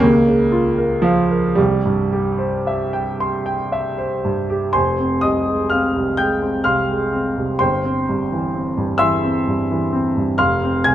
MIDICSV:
0, 0, Header, 1, 2, 480
1, 0, Start_track
1, 0, Key_signature, -4, "minor"
1, 0, Tempo, 1041667
1, 727, Tempo, 1096892
1, 1207, Tempo, 1036269
1, 2167, Tempo, 950872
1, 2168, Time_signature, 12, 3, 24, 8
1, 3607, Tempo, 931677
1, 5332, End_track
2, 0, Start_track
2, 0, Title_t, "Grand piano"
2, 0, Program_c, 0, 0
2, 0, Control_c, 0, 64, 127
2, 0, Note_on_c, 0, 58, 104
2, 13, Note_on_c, 0, 37, 68
2, 15, Control_c, 0, 64, 0
2, 91, Control_c, 0, 64, 127
2, 126, Note_on_c, 0, 49, 53
2, 240, Note_on_c, 0, 65, 57
2, 315, Note_off_c, 0, 49, 0
2, 360, Note_on_c, 0, 70, 53
2, 433, Note_off_c, 0, 65, 0
2, 469, Note_on_c, 0, 53, 86
2, 478, Note_off_c, 0, 58, 0
2, 480, Note_on_c, 0, 77, 57
2, 554, Note_off_c, 0, 70, 0
2, 603, Note_on_c, 0, 70, 51
2, 677, Note_off_c, 0, 77, 0
2, 712, Note_off_c, 0, 37, 0
2, 716, Note_on_c, 0, 55, 84
2, 721, Note_off_c, 0, 53, 0
2, 727, Note_off_c, 0, 70, 0
2, 728, Note_on_c, 0, 36, 68
2, 734, Control_c, 0, 64, 0
2, 816, Control_c, 0, 64, 127
2, 849, Note_on_c, 0, 43, 53
2, 966, Note_on_c, 0, 67, 57
2, 1041, Note_off_c, 0, 43, 0
2, 1081, Note_on_c, 0, 72, 51
2, 1159, Note_off_c, 0, 67, 0
2, 1205, Note_on_c, 0, 76, 54
2, 1278, Note_off_c, 0, 72, 0
2, 1326, Note_on_c, 0, 79, 58
2, 1402, Note_off_c, 0, 76, 0
2, 1453, Note_on_c, 0, 84, 63
2, 1520, Note_off_c, 0, 79, 0
2, 1570, Note_on_c, 0, 79, 60
2, 1642, Note_off_c, 0, 84, 0
2, 1693, Note_on_c, 0, 76, 57
2, 1761, Note_off_c, 0, 79, 0
2, 1813, Note_on_c, 0, 72, 52
2, 1884, Note_off_c, 0, 76, 0
2, 1925, Note_off_c, 0, 55, 0
2, 1935, Note_on_c, 0, 43, 58
2, 2007, Note_off_c, 0, 72, 0
2, 2052, Note_on_c, 0, 67, 55
2, 2124, Note_off_c, 0, 43, 0
2, 2150, Note_off_c, 0, 36, 0
2, 2158, Note_on_c, 0, 84, 79
2, 2160, Note_on_c, 0, 80, 54
2, 2162, Note_on_c, 0, 72, 57
2, 2168, Note_off_c, 0, 67, 0
2, 2170, Note_on_c, 0, 29, 59
2, 2178, Control_c, 0, 64, 0
2, 2268, Control_c, 0, 64, 127
2, 2293, Note_on_c, 0, 60, 46
2, 2392, Note_off_c, 0, 80, 0
2, 2393, Note_off_c, 0, 72, 0
2, 2402, Note_on_c, 0, 87, 76
2, 2409, Note_off_c, 0, 84, 0
2, 2410, Note_on_c, 0, 75, 57
2, 2417, Note_on_c, 0, 36, 44
2, 2487, Note_off_c, 0, 60, 0
2, 2539, Note_on_c, 0, 56, 46
2, 2608, Note_off_c, 0, 36, 0
2, 2635, Note_off_c, 0, 75, 0
2, 2646, Note_on_c, 0, 89, 68
2, 2648, Note_off_c, 0, 87, 0
2, 2655, Note_on_c, 0, 77, 51
2, 2660, Note_on_c, 0, 60, 49
2, 2727, Note_off_c, 0, 56, 0
2, 2779, Note_on_c, 0, 36, 44
2, 2845, Note_off_c, 0, 60, 0
2, 2873, Note_off_c, 0, 77, 0
2, 2885, Note_off_c, 0, 89, 0
2, 2887, Note_on_c, 0, 91, 80
2, 2892, Note_on_c, 0, 79, 61
2, 2902, Note_on_c, 0, 56, 47
2, 2963, Note_off_c, 0, 36, 0
2, 3013, Note_on_c, 0, 60, 47
2, 3084, Note_off_c, 0, 56, 0
2, 3111, Note_off_c, 0, 79, 0
2, 3122, Note_on_c, 0, 89, 79
2, 3125, Note_off_c, 0, 91, 0
2, 3126, Note_on_c, 0, 77, 59
2, 3129, Note_on_c, 0, 84, 57
2, 3134, Note_on_c, 0, 36, 49
2, 3201, Note_off_c, 0, 60, 0
2, 3249, Note_on_c, 0, 56, 44
2, 3322, Note_off_c, 0, 36, 0
2, 3369, Note_on_c, 0, 60, 49
2, 3440, Note_off_c, 0, 56, 0
2, 3494, Note_on_c, 0, 36, 42
2, 3561, Note_off_c, 0, 60, 0
2, 3587, Note_off_c, 0, 77, 0
2, 3588, Note_off_c, 0, 29, 0
2, 3589, Note_off_c, 0, 84, 0
2, 3602, Note_on_c, 0, 84, 76
2, 3606, Note_off_c, 0, 89, 0
2, 3610, Note_on_c, 0, 72, 57
2, 3610, Note_on_c, 0, 79, 57
2, 3611, Note_off_c, 0, 36, 0
2, 3614, Note_on_c, 0, 31, 53
2, 3615, Control_c, 0, 64, 0
2, 3707, Control_c, 0, 64, 127
2, 3734, Note_on_c, 0, 60, 49
2, 3861, Note_on_c, 0, 43, 47
2, 3926, Note_off_c, 0, 60, 0
2, 3979, Note_on_c, 0, 52, 46
2, 4048, Note_off_c, 0, 43, 0
2, 4097, Note_on_c, 0, 60, 43
2, 4165, Note_off_c, 0, 52, 0
2, 4211, Note_on_c, 0, 43, 45
2, 4284, Note_off_c, 0, 60, 0
2, 4310, Note_off_c, 0, 72, 0
2, 4310, Note_off_c, 0, 79, 0
2, 4317, Note_off_c, 0, 84, 0
2, 4317, Note_on_c, 0, 88, 89
2, 4323, Note_on_c, 0, 76, 66
2, 4324, Note_on_c, 0, 84, 68
2, 4332, Note_on_c, 0, 52, 52
2, 4402, Note_off_c, 0, 43, 0
2, 4451, Note_on_c, 0, 60, 52
2, 4523, Note_off_c, 0, 52, 0
2, 4574, Note_on_c, 0, 43, 46
2, 4642, Note_off_c, 0, 60, 0
2, 4694, Note_on_c, 0, 52, 46
2, 4763, Note_off_c, 0, 43, 0
2, 4807, Note_on_c, 0, 60, 55
2, 4881, Note_off_c, 0, 52, 0
2, 4930, Note_on_c, 0, 43, 46
2, 4997, Note_off_c, 0, 60, 0
2, 5022, Note_off_c, 0, 76, 0
2, 5023, Note_off_c, 0, 84, 0
2, 5029, Note_off_c, 0, 31, 0
2, 5039, Note_on_c, 0, 89, 85
2, 5040, Note_off_c, 0, 88, 0
2, 5043, Note_on_c, 0, 77, 67
2, 5043, Note_on_c, 0, 84, 67
2, 5048, Note_off_c, 0, 43, 0
2, 5050, Note_on_c, 0, 29, 65
2, 5054, Control_c, 0, 64, 0
2, 5137, Control_c, 0, 64, 127
2, 5171, Note_on_c, 0, 60, 50
2, 5269, Note_off_c, 0, 77, 0
2, 5269, Note_off_c, 0, 84, 0
2, 5278, Note_on_c, 0, 92, 91
2, 5284, Note_off_c, 0, 89, 0
2, 5284, Note_on_c, 0, 80, 65
2, 5292, Note_on_c, 0, 36, 47
2, 5332, Note_off_c, 0, 29, 0
2, 5332, Note_off_c, 0, 36, 0
2, 5332, Note_off_c, 0, 60, 0
2, 5332, Note_off_c, 0, 80, 0
2, 5332, Note_off_c, 0, 92, 0
2, 5332, End_track
0, 0, End_of_file